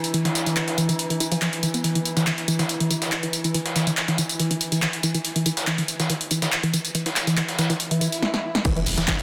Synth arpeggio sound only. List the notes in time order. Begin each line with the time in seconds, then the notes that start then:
0.14 E3
0.25 E3
0.46 E3
0.56 E3
0.78 E3
0.89 E3
1.10 E3
1.20 E3
1.32 F3
1.42 F3
1.63 E3
1.74 B3
1.84 E3
1.95 E3
2.17 E3
2.27 E3
2.48 E3
2.59 E3
2.80 E3
2.91 E3
3.12 E3
3.23 E3
3.44 E3
3.54 E3
3.76 E3
3.87 E3
4.08 E3
4.18 E3
4.40 E3
4.51 E3
4.72 E3
4.82 E3
5.03 E3
5.15 E3
5.36 E3
5.46 E3
5.67 E3
5.78 E3
6.00 E3
6.10 E3
6.31 E3
6.42 E3
6.63 E3
6.74 E3
6.95 E3
7.06 E3
7.27 E3
7.37 E3
7.59 E3
7.70 E3
7.91 E3
8.01 E3
8.65 E3
8.76 E3
8.97 E3
9.08 E3